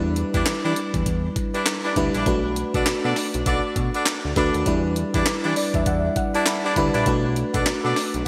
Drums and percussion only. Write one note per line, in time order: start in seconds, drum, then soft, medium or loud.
0.16 closed hi-hat medium
0.34 kick medium
0.34 closed hi-hat medium
0.46 snare loud
0.46 clap loud
0.46 closed hi-hat medium
0.76 closed hi-hat medium
0.94 kick loud
0.94 closed hi-hat medium
1.06 kick loud
1.06 closed hi-hat medium
1.36 kick medium
1.36 closed hi-hat medium
1.54 closed hi-hat soft
1.66 snare loud
1.66 clap loud
1.66 closed hi-hat medium
1.96 kick medium
1.96 closed hi-hat medium
2.14 closed hi-hat soft
2.26 kick loud
2.26 closed hi-hat medium
2.56 closed hi-hat medium
2.74 kick medium
2.74 closed hi-hat medium
2.86 snare loud
2.86 clap loud
2.86 closed hi-hat medium
3.16 snare medium
3.16 open hi-hat medium
3.34 closed hi-hat medium
3.46 kick loud
3.46 closed hi-hat medium
3.76 kick loud
3.76 closed hi-hat medium
3.94 closed hi-hat soft
4.06 snare loud
4.06 clap loud
4.06 closed hi-hat medium
4.36 kick medium
4.36 closed hi-hat medium
4.54 closed hi-hat soft
4.66 kick loud
4.66 closed hi-hat medium
4.96 closed hi-hat medium
5.14 kick medium
5.14 closed hi-hat medium
5.26 snare loud
5.26 clap loud
5.26 closed hi-hat medium
5.56 open hi-hat medium
5.74 kick loud
5.74 closed hi-hat medium
5.86 kick loud
5.86 closed hi-hat medium
6.16 kick medium
6.16 closed hi-hat medium
6.35 closed hi-hat medium
6.46 snare loud
6.46 clap loud
6.46 closed hi-hat medium
6.76 kick medium
6.76 closed hi-hat medium
6.94 closed hi-hat soft
7.06 kick loud
7.06 closed hi-hat medium
7.36 closed hi-hat medium
7.54 kick medium
7.54 closed hi-hat medium
7.66 snare loud
7.66 clap medium
7.66 closed hi-hat medium
7.96 snare medium
7.96 open hi-hat medium
8.14 closed hi-hat medium